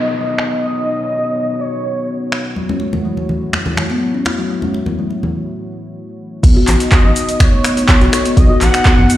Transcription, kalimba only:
2.56 F#3
2.69 C#4
3.05 F#3
3.66 E3
3.90 B3
4.02 F#3
4.14 C#4
4.26 E4
4.39 F#3
4.50 F#3
4.63 C#4
4.99 F#3
6.43 B3
6.56 F#4
6.92 B3
7.53 A3
7.77 D#4
7.89 B3
8.01 F#4
8.13 A4
8.26 B3
8.37 B3
8.50 F#4
8.85 B3

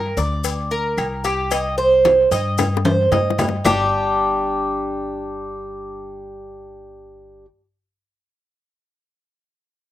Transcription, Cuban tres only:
Already playing: A#4
0.17 D5
0.71 A#4
1.25 G4
1.51 D#5
1.78 C5
2.32 D#5
2.85 C5
3.12 D#5
3.65 G3 D4 G4

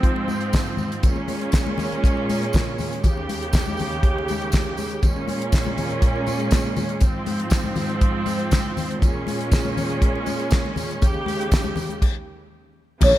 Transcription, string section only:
Already playing: G#2 F3 C4
1.04 A#2 G#3 C#4
3.02 D#2 C#3 G4
5.02 A#2 G#3 C#4
7.03 G#2 F3 C4
9.01 A#2 G#3 C#4
11.01 D#2 C#3 G4
13.01 C#3 G#3 A#3

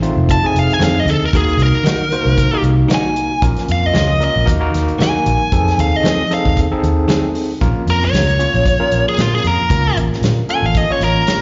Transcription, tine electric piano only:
0.02 A3 C4 D#4 F4
0.43 A3 C4 D#4 G#4
1.34 A#3 D#4 F#4 A#4
2.12 A#3 D#4 F#4 C5
2.53 A#3 D#4 F#4 A#4
3.42 A#3 C#4 F4 A#4
4.20 A#3 C#4 F4 A#4
4.46 A#3 D#4 F#4 A#4
4.60 A#3 D#4 F#4 A#4
5.53 C4 D#4 G#4 A4
6.31 C4 D#4 G#4 A4
6.72 C4 D#4 G#4 A4
7.61 A#3 C#4 F4 A#4
8.39 A#3 C#4 F4 C#5
8.80 A#3 C#4 F4 A#4
9.70 A#3 C#4 F4 A#4
10.49 A#3 C#4 F4 A4
10.90 A#3 C#4 F4 C#5

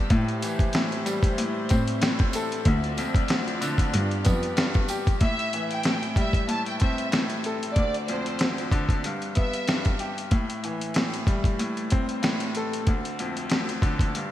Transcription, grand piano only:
Already playing: G2 B3 G4
0.10 A2
0.43 E3
0.76 A2
1.06 G3
1.38 A2
1.70 C4
2.01 A2
2.35 A4
2.67 D2
2.99 F2
3.30 D2
3.61 D3
3.94 G2
4.25 B3
4.57 G2
4.90 G4
5.21 A2
5.54 E3
5.86 A2
6.16 G3
6.49 A2
6.81 C4
7.12 A2
7.46 A4
7.77 D2
8.09 F2
8.41 D2
8.72 D3
9.05 G2
9.35 B3
9.68 G2
10.00 G4
10.32 A2
10.65 E3
10.97 A2
11.27 G3
11.59 A2
11.92 C4
12.23 A2
12.57 A4
12.88 D2
13.20 F2
13.52 D2
13.82 D3
14.16 G2

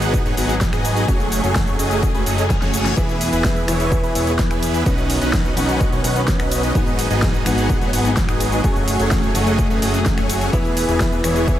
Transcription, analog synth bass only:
Already playing: G#1
0.26 G#1
0.37 G#1
0.73 G#1
1.08 F#1
1.44 F#1
1.79 F#1
2.15 F#1
2.26 F#1
2.62 F#1
2.97 E1
3.33 E1
3.68 E1
4.04 E1
4.15 E1
4.51 E2
4.86 B1
5.22 B1
5.57 B1
5.92 B1
6.04 B1
6.40 B1
6.75 G#1
7.11 G#1
7.46 G#1
7.81 G#1
7.93 G#1
8.29 G#1
8.64 F#1
9.00 F#1
9.35 F#1
9.70 F#1
9.82 F#1
10.18 F#1
10.53 E1
10.89 E1
11.24 E1

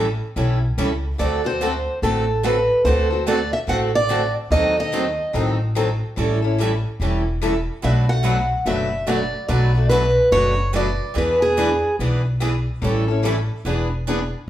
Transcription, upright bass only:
Already playing: A1
0.36 B1
0.78 C#2
1.20 D2
2.02 A1
2.85 D2
3.68 A1
4.51 D#2
5.34 A1
6.17 A1
7.00 E1
7.83 B1
8.66 F#1
9.49 B1
10.32 F#1
11.16 E2
11.99 B1
12.82 A1
13.65 E1

